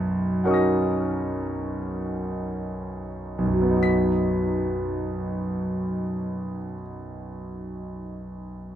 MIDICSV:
0, 0, Header, 1, 2, 480
1, 0, Start_track
1, 0, Key_signature, 5, "major"
1, 0, Tempo, 1415094
1, 151, Tempo, 1587302
1, 631, Tempo, 1812689
1, 1111, Tempo, 1507538
1, 1112, Time_signature, 4, 2, 24, 8
1, 2674, End_track
2, 0, Start_track
2, 0, Title_t, "Grand piano"
2, 0, Program_c, 0, 0
2, 0, Control_c, 0, 64, 127
2, 0, Note_on_c, 0, 35, 72
2, 0, Note_on_c, 0, 42, 57
2, 0, Note_on_c, 0, 78, 70
2, 0, Note_on_c, 0, 83, 73
2, 0, Note_on_c, 0, 87, 71
2, 0, Note_on_c, 0, 90, 93
2, 135, Note_off_c, 0, 78, 0
2, 135, Note_off_c, 0, 83, 0
2, 135, Note_off_c, 0, 87, 0
2, 146, Note_off_c, 0, 90, 0
2, 149, Note_on_c, 0, 78, 47
2, 152, Note_on_c, 0, 54, 57
2, 153, Note_on_c, 0, 61, 51
2, 153, Note_on_c, 0, 70, 60
2, 154, Note_on_c, 0, 63, 54
2, 159, Note_on_c, 0, 85, 48
2, 170, Note_on_c, 0, 87, 48
2, 179, Note_on_c, 0, 94, 46
2, 427, Note_off_c, 0, 42, 0
2, 985, Note_off_c, 0, 35, 0
2, 989, Note_on_c, 0, 35, 56
2, 1008, Note_on_c, 0, 42, 46
2, 1024, Note_off_c, 0, 54, 0
2, 1028, Note_on_c, 0, 54, 49
2, 1050, Note_on_c, 0, 59, 52
2, 1065, Note_off_c, 0, 63, 0
2, 1069, Note_on_c, 0, 63, 49
2, 1091, Note_on_c, 0, 66, 46
2, 1100, Note_off_c, 0, 78, 0
2, 1102, Note_off_c, 0, 61, 0
2, 1102, Note_off_c, 0, 70, 0
2, 1105, Note_off_c, 0, 85, 0
2, 1106, Note_on_c, 0, 95, 67
2, 1109, Note_off_c, 0, 87, 0
2, 1114, Note_off_c, 0, 94, 0
2, 1121, Control_c, 0, 64, 0
2, 1188, Control_c, 0, 64, 127
2, 1957, Note_off_c, 0, 35, 0
2, 1980, Note_off_c, 0, 42, 0
2, 2004, Note_off_c, 0, 54, 0
2, 2031, Note_off_c, 0, 59, 0
2, 2053, Note_off_c, 0, 63, 0
2, 2079, Note_off_c, 0, 66, 0
2, 2098, Note_off_c, 0, 95, 0
2, 2674, End_track
0, 0, End_of_file